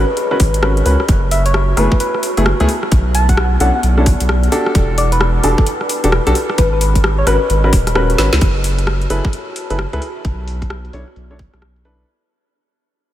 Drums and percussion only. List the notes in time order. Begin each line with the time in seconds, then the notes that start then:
0.17 closed hi-hat
0.31 cross-stick
0.40 kick, open hi-hat
0.54 closed hi-hat
0.63 cross-stick
0.77 closed hi-hat
0.86 open hi-hat
1.00 cross-stick
1.08 kick, closed hi-hat
1.31 open hi-hat
1.46 closed hi-hat
1.54 cross-stick
1.77 cross-stick, open hi-hat
1.92 kick
2.00 closed hi-hat
2.15 cross-stick
2.23 open hi-hat
2.37 closed hi-hat
2.46 cross-stick
2.60 closed hi-hat
2.69 open hi-hat
2.83 cross-stick
2.92 kick, closed hi-hat
3.15 open hi-hat
3.29 kick, closed hi-hat
3.37 cross-stick
3.60 open hi-hat
3.83 closed hi-hat
3.98 cross-stick
4.06 kick, open hi-hat
4.20 closed hi-hat
4.29 cross-stick
4.43 closed hi-hat
4.52 open hi-hat
4.66 cross-stick
4.75 kick, closed hi-hat
4.98 open hi-hat
5.12 closed hi-hat
5.21 cross-stick
5.44 open hi-hat
5.58 kick
5.66 closed hi-hat
5.81 cross-stick
5.89 open hi-hat
6.04 closed hi-hat
6.12 cross-stick
6.27 closed hi-hat
6.35 open hi-hat
6.50 cross-stick
6.58 kick, closed hi-hat
6.81 open hi-hat
6.95 kick, closed hi-hat
7.04 cross-stick
7.27 cross-stick, open hi-hat
7.50 closed hi-hat
7.64 cross-stick
7.73 kick, open hi-hat
7.87 cross-stick, closed hi-hat
7.95 cross-stick
8.10 closed hi-hat
8.18 snare, open hi-hat
8.33 snare
8.41 kick, closed hi-hat
8.64 open hi-hat
8.79 cross-stick, closed hi-hat
8.87 cross-stick
9.02 closed hi-hat
9.10 open hi-hat
9.25 kick, cross-stick
9.33 closed hi-hat
9.56 open hi-hat
9.70 closed hi-hat
9.79 cross-stick
9.93 closed hi-hat
10.02 open hi-hat
10.25 kick, closed hi-hat
10.48 open hi-hat
10.62 kick, cross-stick, closed hi-hat
10.70 cross-stick
10.85 closed hi-hat
10.93 open hi-hat
11.08 cross-stick
11.16 closed hi-hat
11.39 kick, open hi-hat
11.54 cross-stick, closed hi-hat
11.62 cross-stick
11.76 closed hi-hat
11.85 open hi-hat